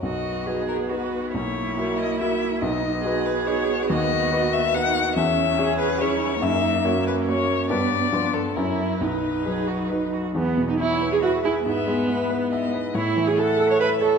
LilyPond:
<<
  \new Staff \with { instrumentName = "Violin" } { \time 3/4 \key b \major \tempo 4 = 140 dis''4. ais'8 b'4 | cis''4. dis''8 e''4 | dis''4. b'8 cis''4 | dis''4. e''8 fis''4 |
e''4. b'8 cis''4 | e''4. b'8 cis''4 | d''4. a'8 ais'4 | b'2~ b'8 r8 |
\key e \major r4 cis''4 b'4 | e''4 b'4 dis''4 | cis''4 fis''4 e''4 | }
  \new Staff \with { instrumentName = "Cello" } { \time 3/4 \key b \major fis'4 gis'4 fis'4 | e'2. | dis'4 gis'2 | fis'2 dis'4 |
cis'4 gis'4 e'4 | dis'4 cis'2 | b4 b4 cis'4 | dis'4 gis'8 fis'8 dis'8 fis'8 |
\key e \major b8. dis'16 e'8. gis'16 fis'8 e'8 | b2~ b8 r8 | e'8. gis'16 a'8. cis''16 b'8 a'8 | }
  \new Staff \with { instrumentName = "Grand piano" } { \time 3/4 \key b \major b,,4 <dis' fis' b'>4 <dis' fis' b'>4 | b,,4 <e' fis' ais'>4 <e' fis' ais'>4 | b,,4 <dis' fis' b'>4 <dis' fis' b'>4 | dis,4 <dis' fis' b'>4 <dis' fis' b'>4 |
e,4 <cis' gis' cis''>4 <cis' gis' cis''>4 | fis,4 <ais fis' cis''>4 <ais fis' cis''>4 | <g, g d' b'>4 <g, f f' b'>4 <fis, fis e' cis''>4 | b,,4 <fis dis' b'>4 <fis dis' b'>4 |
\key e \major e,8 b,8 e'8 b'8 e''8 gis'8 | gis,8 gis8 e'8 b'8 e''8 b'8 | a,8 e8 e'8 a'8 e''8 cis''8 | }
  \new Staff \with { instrumentName = "Viola" } { \time 3/4 \key b \major b2. | ais2. | b2.~ | b2. |
cis'2. | ais2. | b2 e'4 | dis'2~ dis'8 r8 |
\key e \major b8. dis'16 e'8. gis'16 fis'8 e'8 | b2~ b8 r8 | e'8. gis'16 a'8. cis''16 b'8 a'8 | }
>>